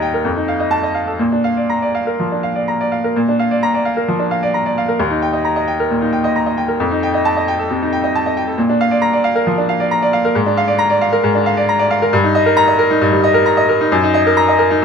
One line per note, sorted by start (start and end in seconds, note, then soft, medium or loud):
0.00 0.22 D#2 medium
0.00 0.27 D#4 medium
0.00 0.28 D#5 medium
0.00 0.02 G5 medium
0.00 0.21 G5 medium
0.00 0.28 A#5 medium
0.14 0.25 A#4 medium
0.25 1.16 F2 medium
0.37 0.55 D#4 medium
0.48 0.67 F5 medium
0.60 0.78 D#5 medium
0.71 0.90 A5 medium
0.83 1.02 D#5 medium
0.94 1.14 F5 medium
1.07 1.19 A4 soft
1.19 2.16 A#2 medium
1.32 1.52 D4 soft
1.44 1.64 F5 medium
1.57 1.77 D5 soft
1.70 1.89 A#5 medium
1.82 2.02 D5 medium
1.95 2.14 F5 medium
2.07 2.26 A#4 medium
2.20 2.39 F3 soft
2.32 2.51 D4 soft
2.43 2.63 F5 medium
2.55 2.75 D5 medium
2.68 2.87 A#5 medium
2.81 3.00 D5 medium
2.92 3.11 F5 medium
3.04 3.16 A#4 medium
3.16 4.06 A#2 medium
3.28 3.47 D4 medium
3.39 3.58 F5 medium
3.51 3.69 D5 medium
3.63 3.81 A#5 medium
3.74 3.92 D5 medium
3.85 4.04 F5 medium
3.97 4.15 A#4 medium
4.08 4.27 F3 medium
4.19 4.38 D4 medium
4.31 4.49 F5 medium
4.43 4.61 D5 medium
4.54 4.72 A#5 medium
4.66 4.84 D5 medium
4.78 4.95 F5 medium
4.88 5.00 A#4 medium
5.00 5.87 D#2 medium
5.10 5.29 D#4 medium
5.22 5.40 G5 medium
5.33 5.52 D#5 medium
5.45 5.63 A#5 medium
5.56 5.74 D#5 medium
5.68 5.86 G5 medium
5.80 5.97 A#4 medium
5.91 6.08 A#2 medium
6.02 6.19 D#4 medium
6.13 6.30 G5 medium
6.24 6.42 D#5 medium
6.36 6.53 A#5 medium
6.46 6.64 D#5 medium
6.57 6.75 G5 medium
6.68 6.80 A#4 medium
6.80 7.67 F2 medium
6.91 7.09 D#4 medium
7.03 7.21 G5 medium
7.14 7.32 D#5 medium
7.25 7.43 A5 medium
7.37 7.54 D#5 medium
7.48 7.66 G5 medium
7.59 7.77 A4 medium
7.71 7.88 C3 medium
7.82 7.99 D#4 medium
7.93 8.10 G5 medium
8.04 8.21 D#5 medium
8.15 8.32 A5 medium
8.26 8.43 D#5 medium
8.37 8.54 G5 medium
8.47 8.58 A4 medium
8.58 9.44 A#2 medium
8.69 8.86 D4 medium
8.81 8.98 F5 medium
8.91 9.09 D5 medium
9.02 9.20 A#5 medium
9.13 9.31 D5 medium
9.24 9.42 F5 medium
9.35 9.53 A#4 medium
9.47 9.65 F3 medium
9.58 9.76 D4 medium
9.69 9.87 F5 medium
9.80 9.98 D5 medium
9.91 10.09 A#5 medium
10.02 10.20 D5 medium
10.13 10.31 F5 medium
10.25 10.35 A#4 medium
10.35 11.21 G#2 medium
10.46 10.63 D4 medium
10.57 10.75 F5 medium
10.68 10.85 D5 medium
10.79 10.96 A#5 loud
10.90 11.08 D5 medium
11.01 11.19 F5 medium
11.12 11.30 A#4 medium
11.24 12.10 G#2 medium
11.35 11.53 D4 medium
11.46 11.64 F5 medium
11.57 11.75 D5 medium
11.69 11.86 A#5 medium
11.79 11.97 D5 medium
11.91 12.08 F5 medium
12.02 12.13 A#4 medium
12.13 12.99 G2 loud
12.24 12.41 D#4 medium
12.35 12.53 D#5 medium
12.46 12.64 A#4 medium
12.57 12.75 A#5 loud
12.68 12.86 D#5 medium
12.79 12.97 A#4 medium
12.90 13.08 D#4 medium
13.01 13.89 G2 medium
13.12 13.30 G3 medium
13.24 13.42 D#5 medium
13.34 13.53 A#4 medium
13.46 13.64 A#5 medium
13.57 13.76 D#5 medium
13.69 13.87 A#4 medium
13.81 13.92 D#4 medium
13.92 14.80 F#2 loud
14.03 14.22 D#4 medium
14.14 14.32 D#5 medium
14.27 14.44 A#4 medium
14.37 14.55 A#5 loud
14.48 14.66 D#5 medium
14.59 14.77 A#4 medium
14.71 14.82 D#4 medium